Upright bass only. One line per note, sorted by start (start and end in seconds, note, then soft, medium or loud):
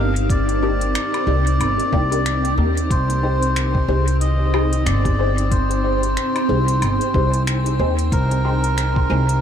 0.00 0.92 G1 medium
1.27 1.57 C2 loud
1.60 1.77 G1 medium
1.92 2.55 C2 medium
2.58 2.87 D#2 medium
2.90 3.86 C2 loud
3.88 4.88 C2 medium
4.86 6.14 G1 medium
6.49 6.78 C2 loud
6.82 6.98 G1 medium
7.14 7.77 C2 medium
7.79 8.09 D#2 medium
8.12 9.07 C2 loud
9.10 9.41 C2 loud